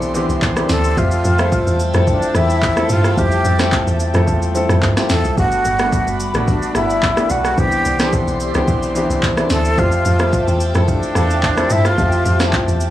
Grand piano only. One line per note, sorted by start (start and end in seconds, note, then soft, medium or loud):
0.00 0.14 E3 medium
0.00 0.15 B3 medium
0.00 0.15 C4 medium
0.00 0.16 D4 medium
0.00 0.16 G4 medium
0.00 0.99 A4 loud
0.14 0.48 E3 medium
0.14 0.48 B3 medium
0.14 0.48 C4 medium
0.14 0.48 D4 medium
0.14 0.49 G4 loud
0.56 0.89 E3 medium
0.56 0.89 B3 medium
0.56 0.90 C4 medium
0.56 0.90 D4 medium
0.56 0.90 G4 medium
0.97 1.30 F3 medium
0.97 1.30 A3 medium
0.97 1.31 C4 medium
0.97 1.31 G4 medium
0.97 1.31 E5 medium
1.39 1.82 F3 medium
1.39 1.83 A3 medium
1.39 1.83 C4 medium
1.39 1.84 A4 medium
1.39 1.83 E5 medium
1.94 2.27 F3 medium
1.94 2.27 A3 medium
1.94 2.27 C4 medium
1.94 2.28 E4 medium
1.94 2.28 A4 medium
2.34 2.68 E3 medium
2.34 2.68 A3 medium
2.34 2.68 C4 medium
2.34 2.69 E4 medium
2.34 2.69 G4 medium
2.76 3.09 F3 medium
2.76 3.09 A3 medium
2.76 3.10 C4 medium
2.76 3.10 E4 medium
2.76 3.10 A4 medium
3.17 3.50 F3 medium
3.17 3.51 A3 medium
3.17 3.51 C4 medium
3.17 3.51 E4 medium
3.17 3.52 G4 medium
3.59 4.03 F3 medium
3.59 4.03 A3 medium
3.59 4.03 C4 medium
3.59 4.03 E4 medium
3.59 4.04 A4 medium
4.14 4.47 F3 medium
4.14 4.47 A3 medium
4.14 4.47 C4 medium
4.14 4.48 E4 medium
4.14 4.48 A4 loud
4.54 4.88 F3 medium
4.54 4.88 A3 medium
4.54 4.89 C4 medium
4.54 4.89 E4 medium
4.54 4.89 A4 loud
4.96 5.29 F3 medium
4.96 5.30 A3 medium
4.96 5.30 C4 medium
4.96 5.30 E4 medium
4.96 5.31 G4 medium
5.37 5.71 G3 medium
5.37 5.71 A3 medium
5.37 5.71 B3 medium
5.37 5.71 D4 medium
5.37 5.72 F#4 medium
5.79 6.23 G3 medium
5.79 6.23 A3 medium
5.79 6.23 B3 medium
5.79 6.24 D4 medium
5.79 6.24 F#4 medium
6.34 6.67 G3 medium
6.34 6.67 A3 medium
6.34 6.68 B3 medium
6.34 6.68 D4 medium
6.34 6.68 F#4 medium
6.75 7.08 G3 medium
6.75 7.08 A3 medium
6.75 7.09 B3 medium
6.75 7.09 D4 medium
6.75 7.09 E4 medium
7.16 7.50 G3 medium
7.16 7.50 A3 medium
7.16 7.50 B3 medium
7.16 7.50 D4 medium
7.16 7.51 G4 medium
7.57 7.91 E3 medium
7.57 7.91 B3 medium
7.57 7.91 C4 medium
7.57 7.92 D4 medium
7.57 7.92 G4 medium
7.99 8.43 E3 medium
7.99 8.43 B3 medium
7.99 8.44 C4 medium
7.99 8.44 D4 medium
7.99 8.44 A4 medium
8.54 8.87 E3 medium
8.54 8.87 B3 medium
8.54 8.88 C4 medium
8.54 8.88 D4 medium
8.54 8.88 G4 loud
8.95 9.28 E3 medium
8.95 9.29 B3 medium
8.95 9.29 C4 medium
8.95 9.29 D4 medium
8.95 9.30 G4 loud
9.37 9.70 E3 medium
9.37 9.70 B3 medium
9.37 9.70 C4 medium
9.37 9.71 D4 medium
9.37 9.71 E4 medium
9.77 10.11 F3 medium
9.77 10.11 A3 medium
9.77 10.12 C4 medium
9.77 10.12 G4 medium
9.77 10.12 E5 medium
10.19 10.63 F3 medium
10.19 10.63 A3 medium
10.19 10.64 C4 medium
10.19 10.64 G4 medium
10.19 10.64 E5 medium
10.74 11.07 F3 medium
10.74 11.08 A3 medium
10.74 11.08 C4 medium
10.74 11.08 E4 medium
10.74 11.09 A4 medium
11.15 11.49 A3 medium
11.15 11.49 C4 medium
11.15 11.49 E4 medium
11.15 11.49 F4 medium
11.15 11.50 A4 medium
11.57 11.90 F3 medium
11.57 11.90 A3 medium
11.57 11.90 C4 medium
11.57 11.91 E4 medium
11.57 11.91 A4 medium
11.98 12.31 F3 medium
11.98 12.31 A3 medium
11.98 12.32 C4 medium
11.98 12.32 G4 medium
11.98 12.32 E5 medium
12.39 12.83 F3 medium
12.39 12.84 A3 medium
12.39 12.84 C4 medium
12.39 12.84 E4 medium
12.39 12.84 G4 medium